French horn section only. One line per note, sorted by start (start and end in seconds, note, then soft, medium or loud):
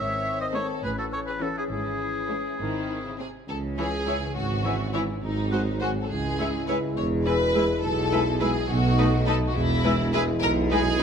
0.00 0.83 D#3 medium
0.00 0.81 C4 soft
0.83 2.60 E3 soft
0.83 2.60 C#4 medium
2.60 3.18 D#3 soft
2.60 3.19 C4 soft
3.48 5.19 E3 soft
3.48 5.19 C#4 medium
5.23 6.08 F#3 medium
5.23 6.08 C4 medium
6.10 8.70 G#3 medium
6.10 8.66 E4 medium
8.70 9.54 A3 medium
8.70 9.55 D#4 medium
9.56 11.03 G#3 medium
9.56 11.03 E4 medium